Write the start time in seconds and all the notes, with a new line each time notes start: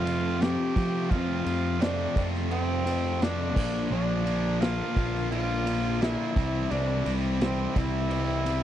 Already playing: F2 F4
0.04 F2 C3 F3 A3 C4 F4, ride
0.40 F2 C3 F3 A3 C4 F4 G4, snare, ride
0.75 F2 C3 F3 A3 C4 F4, kick, ride
1.10 F2 C3 F3 A3 C4 F4, kick, ride
1.44 F2 C3 F3 A3 C4 F4, ride
1.79 F2 C3 F3 A3 C4 D4 F4, snare, ride
2.16 F2 C3 F3 A3 C4 F4, kick, ride
2.35 snare
2.49 F2 C3 F3 A3 C4 F4, ride
2.85 F2 C3 F3 A3 C4 F4, ride
3.20 F2 C3 F3 A3 C4 D4 F4, snare, ride
3.54 A#1 A#2 D3 F3 A#3 D4 F4, kick, crash
3.89 A#1 A#2 D3 F3 A#3 D4 F4
4.24 A#2 D3 F3 A#3 D4 F4, ride
4.61 A#2 D3 F3 A#3 D4 F4, snare, ride
4.96 A#1 A#2 D3 F3 A#3 D4 F4, kick, ride
5.16 snare
5.31 A#2 D3 F3 A#3 D4 F4, ride
5.65 A#2 D3 F3 A#3 D4 F4, ride
6.00 A#2 D3 F3 A#3 D4 E4 F4, snare, ride
6.35 C2 C3 E3 G3 C4 E4, kick, ride
6.71 C2 C3 E3 G3 C4 D4 E4, ride
7.05 C2 C3 E3 G3 C4 E4, ride
7.40 C3 E3 G3 C4 E4, snare, ride
7.74 C2 C3 E3 G3 C4 E4, kick, ride
8.09 C3 E3 G3 C4 E4, ride
8.45 C3 E3 G3 C4 E4, ride